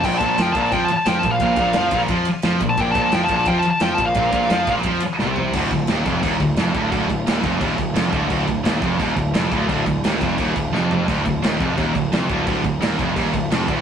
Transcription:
<<
  \new Staff \with { instrumentName = "Lead electric guitar" } { \time 4/4 \key d \phrygian \tempo 4 = 174 \tuplet 3/2 { g''8 a''8 a''8 g''8 a''8 a''8 g''8 a''8 a''8 g''8 a''8 f''8~ } | f''4. r4. \tuplet 3/2 { r4 a''8 } | \tuplet 3/2 { g''8 a''8 a''8 g''8 a''8 a''8 g''8 a''8 a''8 g''8 a''8 f''8~ } | f''4. r2 r8 |
r1 | r1 | r1 | r1 |
r1 | r1 | }
  \new Staff \with { instrumentName = "Distorted electric guitar" } { \clef bass \time 4/4 \key d \phrygian bes,8 bes,8 f8 bes,8 f8 r8 f8 bes,8 | bes,8 bes,8 f8 bes,8 f8 r8 f8 bes,8 | bes,8 bes,8 f8 bes,8 f8 r8 f8 bes,8 | bes,8 bes,8 f8 bes,8 f8 r8 c4 |
d,8 d,8 ees,8 f,8 ees,8 d,8 f,8 d,8 | d,8 d,8 ees,8 f,8 ees,8 d,8 f,8 d,8 | d,8 d,8 ees,8 f,8 ees,8 d,8 f,8 d,8 | d,8 d,8 ees,8 f,8 ees,8 d,8 f,4 |
d,8 d,8 ees,8 f,8 ees,8 d,8 f,8 d,8 | d,8 d,8 ees,8 f,8 ees,8 d,8 f,8 d,8 | }
  \new Staff \with { instrumentName = "Distorted electric guitar" } { \clef bass \time 4/4 \key d \phrygian bes,8 bes,8 f8 bes,8 f8 r8 f8 bes,8 | bes,8 bes,8 f8 bes,8 f8 r8 f8 bes,8 | bes,8 bes,8 f8 bes,8 f8 r8 f8 bes,8 | bes,8 bes,8 f8 bes,8 f8 r8 c4 |
d,8 d,8 ees,8 f,8 ees,8 d,8 f,8 d,8 | d,8 d,8 ees,8 f,8 ees,8 d,8 f,8 d,8 | d,8 d,8 ees,8 f,8 ees,8 d,8 f,8 d,8 | d,8 d,8 ees,8 f,8 ees,8 d,8 f,4 |
d,8 d,8 ees,8 f,8 ees,8 d,8 f,8 d,8 | d,8 d,8 ees,8 f,8 ees,8 d,8 f,8 d,8 | }
  \new Staff \with { instrumentName = "Distorted electric guitar" } { \clef bass \time 4/4 \key d \phrygian bes,8 bes,8 f8 bes,8 f8 r8 f8 bes,8 | bes,8 bes,8 f8 bes,8 f8 r8 f8 bes,8 | bes,8 bes,8 f8 bes,8 f8 r8 f8 bes,8 | bes,8 bes,8 f8 bes,8 f8 r8 c4 |
d,8 d,8 ees,8 f,8 ees,8 d,8 f,8 d,8 | d,8 d,8 ees,8 f,8 ees,8 d,8 f,8 d,8 | d,8 d,8 ees,8 f,8 ees,8 d,8 f,8 d,8 | d,8 d,8 ees,8 f,8 ees,8 d,8 f,4 |
d,8 d,8 ees,8 f,8 ees,8 d,8 f,8 d,8 | d,8 d,8 ees,8 f,8 ees,8 d,8 f,8 d,8 | }
  \new Staff \with { instrumentName = "Picked electric bass" } { \clef bass \time 4/4 \key d \phrygian bes,,8 bes,,8 f,8 bes,,8 f,8 r8 f,8 bes,,8 | bes,,8 bes,,8 f,8 bes,,8 f,8 r8 f,8 bes,,8 | bes,,8 bes,,8 f,8 bes,,8 f,8 r8 f,8 bes,,8 | bes,,8 bes,,8 f,8 bes,,8 f,8 r8 c,4 |
d,,8 d,,8 ees,,8 f,,8 ees,,8 d,,8 f,,8 d,,8 | d,,8 d,,8 ees,,8 f,,8 ees,,8 d,,8 f,,8 d,,8 | d,,8 d,,8 ees,,8 f,,8 ees,,8 d,,8 f,,8 d,,8 | d,,8 d,,8 ees,,8 f,,8 ees,,8 d,,8 f,,4 |
d,,8 d,,8 ees,,8 f,,8 ees,,8 d,,8 f,,8 d,,8 | d,,8 d,,8 ees,,8 f,,8 ees,,8 d,,8 f,,8 d,,8 | }
  \new DrumStaff \with { instrumentName = "Drums" } \drummode { \time 4/4 <cymc bd>8 <bd cymr>8 <cymr sn>8 <bd cymr>16 sn16 <bd cymr>8 cymr8 <cymr sn>8 <bd cymr>8 | <bd cymr>8 <bd cymr>8 <cymr sn>8 <bd cymr>16 sn16 <bd cymr>8 cymr8 <cymr sn>8 <bd cymr>8 | <bd cymr>8 <bd cymr>8 <cymr sn>8 <bd cymr>16 sn16 <bd cymr>8 cymr8 <cymr sn>8 <bd cymr>8 | <bd cymr>8 <bd cymr>16 sn16 <cymr sn>8 <bd cymr>16 sn16 <bd cymr>8 cymr8 sn8 tomfh8 |
<cymc bd>8 <cymc bd>8 <cymc sn>8 <cymc bd>8 <cymc bd>8 <cymc bd>8 <cymc sn>8 <cymc bd>8 | <cymc bd>8 <cymc bd>8 <cymc sn>8 <cymc bd>8 <cymc bd>8 <cymc bd>8 <cymc sn>8 <cymc bd>8 | <cymc bd>8 <cymc bd>8 <cymc sn>8 <cymc bd>8 <cymc bd>8 <cymc bd>8 <cymc sn>8 <cymc bd>8 | <cymc bd>8 <cymc bd>8 <cymc sn>8 <cymc bd>8 <cymc bd>8 <cymc bd>8 sn8 tomfh8 |
<cymc bd>8 <cymc bd>8 <cymc sn>8 <cymc bd>8 <cymc bd>8 <cymc bd>8 <cymc sn>8 <cymc bd>8 | <cymc bd>8 <cymc bd>8 <cymc sn>8 <cymc bd>8 <cymc bd>8 <cymc bd>8 <cymc sn>8 <cymc bd>8 | }
>>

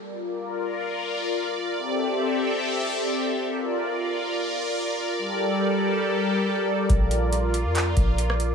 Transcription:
<<
  \new Staff \with { instrumentName = "Analog synth pad" } { \time 4/4 \key bes \lydian \tempo 4 = 140 << { <bes' d''>1 | e''1 | <bes' d''>1~ | <bes' d''>1~ |
<bes' d''>1 | } \\ { f'1 | <c' g' a'>1 | f'1 | <g g' a'>1 |
f'1 | } >> }
  \new Staff \with { instrumentName = "808-style bass" } { \clef bass \time 4/4 \key bes \lydian r1 | r1 | r1 | r1 |
bes,,4.~ bes,,16 f,8. bes,,4. | }
  \new DrumStaff \with { instrumentName = "Drums" } \drummode { \time 4/4 r4 r4 r4 r4 | r4 r4 r4 r4 | r4 r4 r4 r4 | r4 r4 r4 r4 |
<hh bd>8 hh8 hh8 hh8 <hc hh>8 <hh bd>8 hh16 ss16 hh8 | }
>>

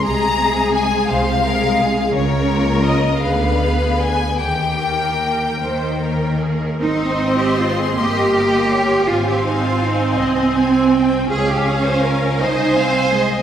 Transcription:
<<
  \new Staff \with { instrumentName = "Violin section" } { \time 6/8 \key aes \major \tempo 4. = 54 bes''4 aes''8 f''4. | des''4 ees''8 f''4 aes''8 | g''2~ g''8 r8 | c'''2. |
aes''2. | aes''4. aes''4. | }
  \new Staff \with { instrumentName = "Violin section" } { \time 6/8 \key aes \major << { aes'4. c''8 bes'8 aes'8 | bes'4. b'4. | g'4. c''8 bes'8 aes'8 | ees''4. ees''4. |
f''4. ees''8 aes''8 g''8 | f''4. aes''4. | } \\ { r2. | r2. | r2. | c''4. ees''8 ees''8 des''8 |
c''4. ees''4. | des''4. ees''8 f''8 ees''8 | } >> }
  \new Staff \with { instrumentName = "Cello section" } { \time 6/8 \key aes \major c4. c4. | des4. d4. | ees4. ees4. | ees'8. g'16 f'16 aes'16 g'4. |
f'16 g'16 ees'16 f'16 ees'8 c'4. | aes'16 g'16 aes'16 c''16 bes'8 c''4. | }
  \new Staff \with { instrumentName = "Viola section" } { \time 6/8 \key aes \major <aes aes'>8 <aes aes'>4. <aes aes'>4 | r8 <bes f'>4 <b aes'>8 <b aes'>4 | r8 <bes bes'>4. <bes bes'>4 | c'4. bes4. |
c'2. | des'4. ees'8 c'8 aes8 | }
  \new Staff \with { instrumentName = "Double bass section" } { \clef bass \time 6/8 \key aes \major c,4. c,4. | des,4. d,4. | ees,4. ees,4. | aes,,4. g,,4. |
aes,,4. c,4. | des,4. c,4. | }
>>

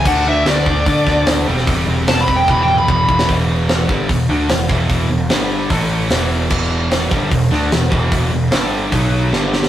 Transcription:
<<
  \new Staff \with { instrumentName = "Lead electric guitar" } { \time 4/4 \key d \lydian \tempo 4 = 149 fis''8 e''8 d''2 r4 | r4 \tuplet 3/2 { a''8 b''8 g''8 b''8 g''8 b''8 } b''4 | r1 | r1 |
r1 | r1 | }
  \new Staff \with { instrumentName = "Distorted electric guitar" } { \clef bass \time 4/4 \key d \lydian <d a d'>2.~ <d a d'>8 <c g c'>8~ | <c g c'>2 <e, b, e>2 | <e, b, e>4. <g, d g>8 <e, b,>8 <d a d'>8 <e, b,>8 <e, b, e>8~ | <e, b, e>8 <e, b,>8 <g, d g>4 <a, e a>4 <e, b, e>4 |
<e, b, e>4. <g, d g>8 <e, b,>8 <d a d'>8 <e, b,>8 <e, b, e>8~ | <e, b, e>8 <e, b,>8 <g, d g>4 <b, fis b>4 <g, d g>4 | }
  \new Staff \with { instrumentName = "Picked electric bass" } { \clef bass \time 4/4 \key d \lydian d,8 d,8 d,8 d,8 d8 d,8 d,8 e,,8 | e,,8 e,,8 e,,8 e,,8 e,,4 e,,8 e,,8 | e,,4. g,,8 e,,8 d,8 e,,8 e,,8~ | e,,8 e,,8 g,,4 a,,4 e,,4 |
e,,4. g,,8 e,,8 d,8 e,,8 e,,8~ | e,,8 e,,8 g,,4 b,,4 g,,4 | }
  \new DrumStaff \with { instrumentName = "Drums" } \drummode { \time 4/4 <cymc bd>4 <hho sn>8 bd8 <hho bd>8 <bd sn>8 <hho sn>8. sn16 | <hho bd>4 <hho sn>8 bd8 <bd tommh>8 toml16 toml16 bd8 bd16 sn16 | <hho bd>4 <hho sn>8 bd8 <hho bd>4 <hho sn>8 bd8 | <hho bd>4 <hho sn>4 <hho bd>4 <hho sn>4 |
<cymc bd>4 <hho sn>8 bd8 <hho bd>8 sn8 <hho sn>8 bd8 | <hho bd>4 <hho sn>4 <hho bd>4 sn8 sn16 sn16 | }
>>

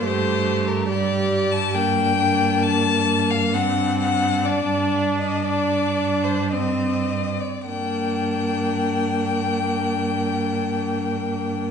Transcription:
<<
  \new Staff \with { instrumentName = "Violin" } { \time 4/4 \key g \minor \tempo 4 = 59 c''8. bes'16 d''8. a''16 g''4 a''8. f''16 | fis''8 fis''8 d''8. ees''16 d''8. c''16 ees''8. d''16 | g''1 | }
  \new Staff \with { instrumentName = "Violin" } { \time 4/4 \key g \minor g'4 g'4 d'2 | d'2. c'8. r16 | d'1 | }
  \new Staff \with { instrumentName = "Viola" } { \time 4/4 \key g \minor a4 g4 bes8 bes4. | c'4 d'4 d'4 c'8. r16 | bes1 | }
  \new Staff \with { instrumentName = "Cello" } { \clef bass \time 4/4 \key g \minor g,1~ | g,2.~ g,8. r16 | g,1 | }
>>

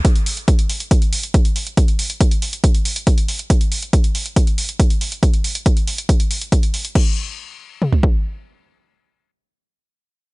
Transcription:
\new DrumStaff \with { instrumentName = "Drums" } \drummode { \time 4/4 \tempo 4 = 139 <hh bd>16 hh16 hho16 hh16 <hh bd>16 hh16 hho16 hh16 <hh bd>16 hh16 hho16 hh16 <hh bd>16 hh16 hho16 hh16 | <hh bd>16 hh16 hho16 hh16 <hh bd>16 hh16 hho16 hh16 <hh bd>16 hh16 hho16 hh16 <hh bd>16 hh16 hho16 hh16 | <hh bd>16 hh16 hho16 hh16 <hh bd>16 hh16 hho16 hh16 <hh bd>16 hh16 hho16 hh16 <hh bd>16 hh16 hho16 hh16 | <hh bd>16 hh16 hho16 hh16 <hh bd>16 hh16 hho16 hh16 <hh bd>16 hh16 hho16 hh16 <hh bd>16 hh16 hho16 hh16 |
<cymc bd>4 r4 toml16 tomfh16 bd8 r4 | r4 r4 r4 r4 | }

